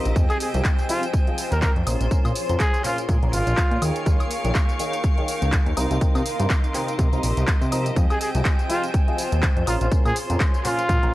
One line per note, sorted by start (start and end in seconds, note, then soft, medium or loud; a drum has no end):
0.00 0.13 F3 medium
0.00 0.85 C4 medium
0.00 0.13 D#4 medium
0.00 0.16 G4 medium
0.00 0.13 A#4 medium
0.00 0.14 A#4 medium
0.00 0.13 C5 medium
0.00 1.87 C5 medium
0.00 0.85 D#5 medium
0.00 1.83 D#5 medium
0.00 0.13 A#5 medium
0.00 0.14 C6 medium
0.05 0.13 A#1 medium
0.05 closed hi-hat soft
0.05 tambourine soft
0.16 0.25 F2 loud
0.16 0.27 F3 medium
0.16 0.27 F4 medium
0.16 2.65 F4 medium
0.16 0.27 G#4 medium
0.16 0.27 D#5 medium
0.16 0.27 G5 medium
0.16 1.85 G5 medium
0.16 1.85 G#5 medium
0.16 kick loud
0.16 closed hi-hat soft
0.16 tambourine soft
0.30 0.37 G#4 medium
0.30 closed hi-hat soft
0.30 tambourine soft
0.30 high woodblock medium
0.40 0.49 G#4 medium
0.40 open hi-hat loud
0.40 tambourine medium
0.54 0.61 C2 loud
0.54 0.63 F3 medium
0.54 0.63 F4 medium
0.54 0.63 G#4 medium
0.54 0.63 D#5 medium
0.54 0.63 G#5 medium
0.54 closed hi-hat soft
0.54 tambourine soft
0.65 kick loud
0.65 clap loud
0.65 closed hi-hat soft
0.65 tambourine soft
0.79 closed hi-hat soft
0.79 tambourine soft
0.89 1.01 F3 medium
0.89 1.01 F4 medium
0.89 1.03 F4 medium
0.89 1.01 G#4 medium
0.89 1.01 D#5 medium
0.89 1.01 G5 medium
0.89 open hi-hat loud
0.89 tambourine medium
1.03 closed hi-hat soft
1.03 tambourine soft
1.13 kick loud
1.13 closed hi-hat soft
1.13 tambourine soft
1.27 1.36 F3 medium
1.27 1.36 F4 medium
1.27 1.36 G#4 medium
1.27 1.36 D#5 medium
1.27 1.36 G#5 loud
1.27 closed hi-hat soft
1.38 open hi-hat loud
1.38 tambourine medium
1.52 1.67 D#2 medium
1.52 1.59 A#4 medium
1.52 closed hi-hat soft
1.52 tambourine soft
1.62 1.71 A#4 medium
1.62 kick loud
1.62 clap loud
1.62 closed hi-hat soft
1.62 tambourine soft
1.76 1.83 F2 medium
1.76 closed hi-hat soft
1.87 1.96 A#1 medium
1.87 2.09 A#2 medium
1.87 2.09 C#4 medium
1.87 5.73 G#4 medium
1.87 6.66 A#4 medium
1.87 2.09 A#4 medium
1.87 2.09 C5 medium
1.87 3.80 C#5 medium
1.87 2.09 A#5 medium
1.87 3.80 C6 medium
1.87 open hi-hat loud
1.87 tambourine medium
1.87 high woodblock medium
2.01 2.08 A#1 medium
2.01 closed hi-hat soft
2.01 tambourine soft
2.11 2.22 A#2 medium
2.11 2.22 C#4 medium
2.11 2.23 A#4 medium
2.11 2.23 C5 medium
2.11 2.23 G#5 loud
2.11 kick loud
2.11 closed hi-hat medium
2.11 tambourine soft
2.25 2.32 A#2 loud
2.25 closed hi-hat soft
2.25 tambourine soft
2.25 high woodblock medium
2.35 open hi-hat loud
2.35 tambourine medium
2.49 2.57 F2 medium
2.49 2.58 A#2 medium
2.49 2.58 C#4 medium
2.49 2.58 A#4 medium
2.49 2.58 C5 medium
2.49 2.58 A#5 medium
2.49 closed hi-hat soft
2.49 tambourine soft
2.56 6.66 F5 medium
2.60 2.82 G#4 medium
2.60 kick loud
2.60 clap loud
2.60 closed hi-hat medium
2.60 tambourine soft
2.74 4.61 C#5 medium
2.74 closed hi-hat soft
2.74 tambourine soft
2.84 2.96 A#2 medium
2.84 2.96 C#4 medium
2.84 2.98 F4 medium
2.84 2.96 A#4 medium
2.84 2.96 C5 medium
2.84 2.96 G#5 medium
2.84 clap soft
2.84 open hi-hat loud
2.84 tambourine medium
2.98 closed hi-hat medium
2.98 tambourine soft
3.09 3.18 A#2 loud
3.09 kick loud
3.09 closed hi-hat medium
3.09 tambourine soft
3.23 3.30 A#1 loud
3.23 3.31 A#2 medium
3.23 3.31 C#4 medium
3.23 3.31 A#4 medium
3.23 3.31 C5 medium
3.23 3.31 A#5 loud
3.23 closed hi-hat soft
3.33 3.43 G#1 loud
3.33 3.82 F4 medium
3.33 open hi-hat loud
3.33 tambourine medium
3.47 3.54 A#1 medium
3.47 closed hi-hat medium
3.47 tambourine soft
3.57 kick loud
3.57 clap loud
3.57 closed hi-hat medium
3.57 tambourine soft
3.71 3.78 A#2 medium
3.71 closed hi-hat soft
3.82 3.91 D#2 medium
3.82 4.04 D#3 medium
3.82 4.04 D#4 medium
3.82 6.48 D#4 medium
3.82 4.04 G#4 medium
3.82 4.04 C#5 medium
3.82 5.75 F5 medium
3.82 4.04 G5 medium
3.82 5.75 C#6 medium
3.82 open hi-hat loud
3.82 tambourine medium
3.82 high woodblock medium
3.96 closed hi-hat soft
3.96 tambourine soft
4.06 4.16 D#2 loud
4.06 4.18 D#3 medium
4.06 4.18 D#4 medium
4.06 4.18 G#4 medium
4.06 4.18 C#5 medium
4.06 4.18 F5 loud
4.06 kick loud
4.06 closed hi-hat medium
4.06 tambourine soft
4.20 closed hi-hat soft
4.20 tambourine soft
4.20 high woodblock medium
4.31 open hi-hat loud
4.31 tambourine medium
4.44 4.52 A#1 loud
4.44 4.53 D#3 medium
4.44 4.53 D#4 medium
4.44 4.53 G#4 medium
4.44 4.53 C#5 medium
4.44 4.53 G5 medium
4.44 closed hi-hat medium
4.44 tambourine soft
4.55 kick loud
4.55 clap loud
4.55 closed hi-hat medium
4.55 tambourine soft
4.69 5.77 G#5 medium
4.69 closed hi-hat soft
4.69 tambourine soft
4.79 4.91 D#3 medium
4.79 4.91 D#4 medium
4.79 4.91 G#4 medium
4.79 4.91 C#5 medium
4.79 4.91 F5 loud
4.79 open hi-hat loud
4.79 tambourine medium
4.93 closed hi-hat medium
4.93 tambourine soft
5.04 kick loud
5.04 closed hi-hat soft
5.04 tambourine soft
5.18 5.26 D#3 medium
5.18 5.26 D#4 medium
5.18 5.26 G#4 medium
5.18 5.26 C#5 medium
5.18 5.26 G5 loud
5.18 closed hi-hat soft
5.28 open hi-hat loud
5.28 tambourine medium
5.42 5.58 C#2 medium
5.42 closed hi-hat medium
5.42 tambourine soft
5.52 kick loud
5.52 clap loud
5.52 closed hi-hat medium
5.52 tambourine soft
5.66 5.74 D#2 medium
5.66 closed hi-hat soft
5.77 5.86 C2 medium
5.77 5.99 C3 medium
5.77 8.65 C4 medium
5.77 5.99 D#4 medium
5.77 5.99 A#4 medium
5.77 7.94 A#4 medium
5.77 5.99 C5 medium
5.77 9.63 D#5 medium
5.77 5.99 A#5 medium
5.77 7.94 C6 medium
5.77 open hi-hat loud
5.77 tambourine medium
5.77 high woodblock medium
5.91 5.98 C2 medium
5.91 closed hi-hat medium
5.91 tambourine soft
6.01 6.13 C3 medium
6.01 6.13 D#4 medium
6.01 6.13 A#4 medium
6.01 6.13 C5 medium
6.01 6.13 G5 loud
6.01 kick loud
6.01 closed hi-hat medium
6.01 tambourine soft
6.09 7.96 G4 medium
6.09 9.67 C5 medium
6.15 6.22 C3 loud
6.15 closed hi-hat soft
6.15 tambourine soft
6.15 high woodblock medium
6.26 open hi-hat loud
6.26 tambourine medium
6.39 6.47 G2 loud
6.39 6.48 C3 medium
6.39 6.48 D#4 medium
6.39 6.48 A#4 medium
6.39 6.48 C5 medium
6.39 6.48 A#5 medium
6.39 closed hi-hat medium
6.39 tambourine soft
6.50 kick loud
6.50 clap loud
6.50 closed hi-hat medium
6.50 tambourine soft
6.64 closed hi-hat soft
6.64 tambourine soft
6.74 6.86 C3 medium
6.74 6.86 D#4 medium
6.74 6.86 A#4 medium
6.74 6.86 C5 medium
6.74 8.64 D#5 medium
6.74 6.86 G5 medium
6.74 clap soft
6.74 open hi-hat loud
6.74 tambourine medium
6.88 closed hi-hat medium
6.88 tambourine soft
6.99 7.08 C3 loud
6.99 kick loud
6.99 closed hi-hat medium
6.99 tambourine soft
7.13 7.20 C2 medium
7.13 7.21 C3 medium
7.13 7.21 D#4 medium
7.13 7.21 A#4 medium
7.13 7.21 C5 medium
7.13 7.21 A#5 loud
7.13 closed hi-hat soft
7.13 tambourine soft
7.23 7.33 A#1 medium
7.23 open hi-hat loud
7.23 tambourine medium
7.37 7.44 C2 medium
7.37 closed hi-hat medium
7.37 tambourine soft
7.48 kick loud
7.48 clap loud
7.48 closed hi-hat medium
7.48 tambourine soft
7.61 7.91 C3 medium
7.61 closed hi-hat soft
7.61 tambourine soft
7.72 7.94 F3 medium
7.72 7.94 D#4 medium
7.72 7.94 A#4 medium
7.72 7.94 C5 medium
7.72 7.94 A#5 medium
7.72 open hi-hat loud
7.72 tambourine medium
7.72 high woodblock medium
7.86 closed hi-hat medium
7.86 tambourine soft
7.96 8.06 F2 loud
7.96 8.08 F3 medium
7.96 10.42 F4 medium
7.96 8.08 F4 medium
7.96 8.08 G#4 medium
7.96 8.08 D#5 medium
7.96 8.08 G5 loud
7.96 9.66 G5 medium
7.96 9.66 G#5 medium
7.96 kick loud
7.96 closed hi-hat medium
7.96 tambourine soft
8.10 8.17 G#4 medium
8.10 closed hi-hat soft
8.10 tambourine soft
8.10 high woodblock medium
8.21 8.30 G#4 medium
8.21 open hi-hat loud
8.21 tambourine medium
8.35 8.42 C2 loud
8.35 8.43 F3 medium
8.35 8.43 F4 medium
8.35 8.43 G#4 medium
8.35 8.43 D#5 medium
8.35 8.43 G#5 medium
8.35 closed hi-hat medium
8.35 tambourine soft
8.45 kick loud
8.45 clap loud
8.45 closed hi-hat medium
8.45 tambourine soft
8.59 closed hi-hat soft
8.59 tambourine soft
8.70 8.81 F3 medium
8.70 8.81 F4 medium
8.70 8.84 F4 medium
8.70 8.81 G#4 medium
8.70 8.81 D#5 medium
8.70 8.81 G5 loud
8.70 open hi-hat loud
8.70 tambourine medium
8.84 closed hi-hat medium
8.84 tambourine soft
8.94 kick loud
8.94 closed hi-hat medium
8.94 tambourine soft
9.08 9.17 F3 loud
9.08 9.16 F4 medium
9.08 9.17 G#4 medium
9.08 9.16 D#5 medium
9.08 9.17 G#5 loud
9.08 closed hi-hat soft
9.18 open hi-hat loud
9.18 tambourine medium
9.32 9.48 D#2 medium
9.32 closed hi-hat medium
9.32 tambourine soft
9.43 kick loud
9.43 clap loud
9.43 closed hi-hat medium
9.43 tambourine soft
9.57 9.64 F2 medium
9.57 closed hi-hat soft
9.67 9.77 A#1 medium
9.67 9.89 A#2 medium
9.67 9.89 C#4 medium
9.67 9.76 F4 medium
9.67 11.14 G#4 medium
9.67 9.89 A#4 medium
9.67 11.14 A#4 medium
9.67 9.89 C5 medium
9.67 11.14 C#5 medium
9.67 9.89 A#5 medium
9.67 11.14 C6 medium
9.67 open hi-hat loud
9.67 tambourine medium
9.67 high woodblock medium
9.81 9.88 A#1 medium
9.81 9.88 F4 medium
9.81 closed hi-hat medium
9.81 tambourine soft
9.92 10.03 A#2 medium
9.92 10.03 C#4 medium
9.92 10.03 A#4 medium
9.92 10.03 C5 medium
9.92 10.03 G#5 loud
9.92 kick loud
9.92 closed hi-hat medium
9.92 tambourine soft
10.05 10.13 A#2 loud
10.05 10.16 G#4 medium
10.05 closed hi-hat soft
10.05 tambourine soft
10.05 high woodblock medium
10.10 11.14 F5 medium
10.16 open hi-hat loud
10.16 tambourine medium
10.30 10.37 F2 loud
10.30 10.38 A#2 medium
10.30 10.38 C#4 medium
10.30 10.38 A#4 medium
10.30 10.38 C5 medium
10.30 10.38 A#5 medium
10.30 closed hi-hat medium
10.30 tambourine soft
10.40 kick loud
10.40 clap loud
10.40 closed hi-hat medium
10.40 tambourine soft
10.54 11.14 C#5 medium
10.54 closed hi-hat soft
10.54 tambourine soft
10.65 10.76 A#2 medium
10.65 10.76 C#4 medium
10.65 11.14 F4 medium
10.65 10.76 A#4 medium
10.65 10.76 C5 medium
10.65 10.76 G#5 loud
10.65 clap soft
10.65 open hi-hat loud
10.65 tambourine medium
10.79 closed hi-hat medium
10.79 tambourine soft
10.89 10.99 A#2 loud
10.89 kick loud
10.89 closed hi-hat medium
10.89 tambourine soft
11.03 11.10 A#1 loud
11.03 11.12 A#2 medium
11.03 11.12 C#4 medium
11.03 11.12 A#4 medium
11.03 11.12 C5 medium
11.03 11.12 A#5 loud
11.03 closed hi-hat soft